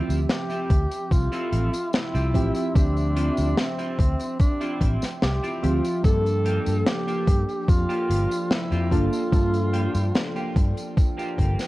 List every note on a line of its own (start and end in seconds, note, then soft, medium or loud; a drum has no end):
0.00 2.30 F3 medium
0.00 11.67 F3 medium
0.00 0.19 C4 medium
0.00 2.29 C4 medium
0.00 0.19 E4 loud
0.00 0.19 F4 medium
0.00 0.19 G4 loud
0.00 2.31 G4 medium
0.00 2.30 E5 medium
0.00 6.00 E5 medium
0.00 6.01 G5 medium
0.00 6.01 C6 medium
0.09 0.24 D2 medium
0.09 closed hi-hat medium
0.09 tambourine medium
0.29 1.13 G4 loud
0.29 snare loud
0.29 closed hi-hat medium
0.29 tambourine soft
0.50 0.70 C4 medium
0.50 0.70 E4 medium
0.50 0.70 F4 medium
0.50 0.70 G4 loud
0.50 closed hi-hat soft
0.50 tambourine soft
0.70 0.86 D2 medium
0.70 kick loud
0.70 closed hi-hat loud
0.91 muted clean electric guitar stroke soft
0.91 closed hi-hat medium
0.91 tambourine medium
1.11 1.27 C2 medium
1.11 1.95 F4 loud
1.11 kick loud
1.11 closed hi-hat medium
1.11 tambourine medium
1.32 1.73 C4 loud
1.32 1.73 E4 loud
1.32 1.73 F4 loud
1.32 1.73 A4 loud
1.32 closed hi-hat soft
1.32 tambourine soft
1.52 1.68 A1 medium
1.52 closed hi-hat medium
1.73 closed hi-hat medium
1.73 tambourine medium
1.93 2.77 E4 loud
1.93 snare loud
1.93 closed hi-hat medium
1.93 tambourine soft
2.14 2.34 C2 loud
2.14 2.65 C4 medium
2.14 2.66 E4 medium
2.14 2.66 F4 medium
2.14 2.66 G4 medium
2.14 closed hi-hat soft
2.14 tambourine soft
2.34 2.50 A1 medium
2.34 2.71 F3 medium
2.34 2.71 C4 medium
2.34 2.71 G4 medium
2.34 2.71 E5 medium
2.34 kick medium
2.34 closed hi-hat loud
2.55 closed hi-hat medium
2.55 tambourine medium
2.74 3.29 D2 loud
2.74 5.59 F3 medium
2.74 5.58 C4 medium
2.74 3.60 D4 loud
2.74 5.59 G4 medium
2.74 5.58 E5 medium
2.74 kick loud
2.74 closed hi-hat medium
2.74 tambourine soft
2.97 closed hi-hat soft
2.97 tambourine soft
3.16 3.48 C4 loud
3.16 3.48 E4 medium
3.16 3.48 F4 loud
3.16 3.48 A4 loud
3.16 closed hi-hat loud
3.37 3.53 D2 medium
3.37 closed hi-hat medium
3.37 tambourine medium
3.57 4.40 C4 loud
3.57 snare loud
3.57 closed hi-hat medium
3.57 tambourine soft
3.78 3.99 C4 medium
3.78 3.99 E4 medium
3.78 3.99 F4 medium
3.78 3.99 G4 loud
3.78 closed hi-hat soft
3.78 tambourine soft
3.99 4.15 D2 medium
3.99 kick loud
3.99 closed hi-hat loud
4.19 muted clean electric guitar stroke soft
4.19 closed hi-hat medium
4.19 tambourine medium
4.40 4.92 D4 loud
4.40 kick loud
4.40 closed hi-hat medium
4.40 tambourine soft
4.61 5.02 C4 loud
4.61 5.02 E4 medium
4.61 5.02 F4 medium
4.61 5.02 G4 loud
4.61 closed hi-hat soft
4.61 tambourine soft
4.81 4.97 A1 loud
4.81 kick medium
4.81 closed hi-hat loud
5.02 snare soft
5.02 closed hi-hat medium
5.02 tambourine medium
5.22 5.38 C2 medium
5.22 5.65 G4 loud
5.22 snare loud
5.22 closed hi-hat medium
5.22 tambourine soft
5.43 5.94 C4 medium
5.43 5.94 E4 medium
5.43 5.94 F4 medium
5.43 5.94 G4 loud
5.43 closed hi-hat soft
5.43 tambourine soft
5.62 5.79 D2 loud
5.62 6.00 F3 medium
5.62 5.99 C4 medium
5.62 6.04 F4 loud
5.62 6.00 G4 medium
5.62 5.99 E5 medium
5.62 closed hi-hat loud
5.84 closed hi-hat medium
5.84 tambourine medium
6.03 6.58 G2 loud
6.03 8.87 F3 medium
6.03 8.86 A#3 medium
6.03 8.87 D4 medium
6.03 6.88 A4 loud
6.03 8.88 A4 medium
6.03 11.67 D5 medium
6.03 11.67 G5 medium
6.03 kick loud
6.03 closed hi-hat medium
6.03 tambourine soft
6.26 closed hi-hat soft
6.26 tambourine soft
6.45 6.76 A#3 loud
6.45 6.77 F4 medium
6.45 6.77 G4 loud
6.45 closed hi-hat medium
6.66 6.82 G2 medium
6.66 closed hi-hat medium
6.66 tambourine soft
6.86 7.70 G4 loud
6.86 snare loud
6.86 closed hi-hat medium
6.86 tambourine soft
7.07 7.28 A#3 medium
7.07 7.28 F4 medium
7.07 7.28 G4 loud
7.07 closed hi-hat soft
7.07 tambourine soft
7.27 7.43 G2 medium
7.27 kick loud
7.27 closed hi-hat loud
7.48 muted clean electric guitar stroke soft
7.48 closed hi-hat medium
7.48 tambourine medium
7.68 7.84 F2 medium
7.68 8.52 F4 loud
7.68 kick loud
7.68 closed hi-hat medium
7.68 tambourine soft
7.89 8.30 A#3 loud
7.89 8.31 F4 loud
7.89 8.31 G4 loud
7.89 closed hi-hat soft
7.89 tambourine soft
8.10 8.25 G1 medium
8.10 closed hi-hat loud
8.31 closed hi-hat medium
8.31 tambourine medium
8.51 8.93 E4 loud
8.51 snare loud
8.51 closed hi-hat medium
8.51 tambourine soft
8.71 8.93 F2 loud
8.71 9.23 A#3 medium
8.71 9.23 F4 medium
8.71 9.23 G4 loud
8.71 closed hi-hat soft
8.71 tambourine soft
8.91 9.08 G1 medium
8.91 9.28 A#3 medium
8.91 9.28 D4 medium
8.91 10.56 F4 loud
8.91 9.28 F4 medium
8.91 9.29 A4 loud
8.91 kick medium
8.91 closed hi-hat loud
9.13 closed hi-hat medium
9.13 tambourine soft
9.31 9.86 G2 loud
9.31 11.67 A#3 medium
9.31 11.67 D4 medium
9.31 11.67 F4 medium
9.31 11.67 A4 medium
9.31 kick loud
9.31 closed hi-hat medium
9.31 tambourine soft
9.54 closed hi-hat soft
9.54 tambourine soft
9.73 10.05 A#3 loud
9.73 10.05 F4 medium
9.73 10.05 G4 loud
9.73 closed hi-hat medium
9.95 10.10 G2 medium
9.95 closed hi-hat medium
9.95 tambourine medium
10.15 snare loud
10.15 closed hi-hat medium
10.15 tambourine soft
10.35 10.56 A#3 medium
10.35 10.56 F4 medium
10.35 10.56 G4 loud
10.35 closed hi-hat soft
10.35 tambourine soft
10.56 10.72 G2 medium
10.56 kick loud
10.56 closed hi-hat medium
10.77 muted clean electric guitar stroke soft
10.77 closed hi-hat medium
10.77 tambourine medium
10.97 kick loud
10.97 closed hi-hat medium
10.97 tambourine soft
11.18 11.59 A#3 loud
11.18 11.59 F4 medium
11.18 11.60 G4 loud
11.18 closed hi-hat soft
11.18 tambourine soft
11.38 11.54 G1 loud
11.38 kick medium
11.38 closed hi-hat medium
11.59 snare soft
11.59 closed hi-hat medium
11.59 tambourine medium